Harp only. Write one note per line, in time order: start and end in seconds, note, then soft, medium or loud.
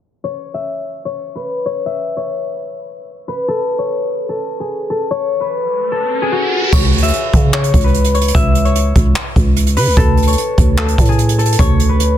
0.24 1.05 C#5 loud
0.54 1.85 E5 medium
1.05 1.65 C#5 medium
1.35 3.28 B4 medium
1.66 2.16 C#5 medium
1.86 3.58 E5 loud
2.17 3.78 C#5 medium
3.28 5.33 B4 medium
3.48 4.29 A4 loud
3.79 5.10 C#5 medium
4.29 4.66 A4 medium
4.60 4.96 G#4 medium
4.90 5.91 A4 medium
5.11 6.72 C#5 loud
5.41 7.45 B4 medium
5.92 6.28 A4 medium
6.22 8.49 G#4 medium
6.32 8.76 F#4 medium
6.73 7.53 C#5 medium
7.03 8.34 E5 medium
7.54 8.14 C#5 medium
7.84 9.76 B4 medium
8.15 8.65 C#5 medium
8.35 10.07 E5 loud
8.65 10.27 C#5 medium
9.77 11.82 B4 medium
9.97 10.77 A4 loud
10.27 11.59 C#5 medium
10.78 11.15 A4 medium
11.09 11.44 G#4 medium
11.38 12.18 A4 medium
11.59 12.18 C#5 loud
11.89 12.18 B4 medium